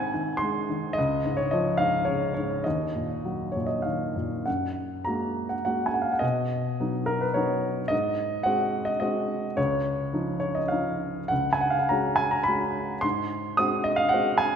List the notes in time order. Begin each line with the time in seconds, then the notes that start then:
Already playing: G#2 D#3 C4 F#5 G#5
0.14 D#3
0.37 C6
0.42 G#3
0.69 D#3
0.93 D#5
0.98 C#2
1.26 G#2
1.37 C#5
1.51 F3 D#5
1.77 G#2 F5
2.05 C#3 C#5
2.34 G#2 C#5
2.64 D#2 D#5
2.96 A#2
3.25 F#3
3.52 A#2 C#5
3.67 D#5
3.82 D#3 F5
4.16 A#2
4.46 F#2 F#5
5.05 G#3 A#3 F#4 A#5
5.49 F#5
5.65 G#3 A#3 F#4 F#5
5.86 G#5
5.94 F#5
6.02 F5
6.12 F#5
6.19 B2 D#5
6.80 F#3 B3 D#4
7.06 A#4
7.21 B4
7.34 F#3 B3 D#4 C#5
7.88 G#2 D#5
8.43 G#3 C4 F#4 F#5
8.85 D#5
9.00 G#3 C4 F#4 D#5
9.57 C#2 C#5
10.13 F3 C#4 D#4
10.40 C#5
10.55 D#5
10.68 F3 C#4 D#4 F5
11.28 C#2 F#5
11.53 G#5
11.61 F#5
11.70 F5
11.79 F#5
11.89 G#3 C#4 F#4 A#5
12.16 G#5
12.31 A#5
12.44 B5
12.48 G#3 C#4 F#4
13.01 G#2 C6
13.57 G#3 C4 F#4 D#6
13.84 D#5
13.96 F5
14.09 F#5
14.14 G#3 C4 F#4
14.38 G#5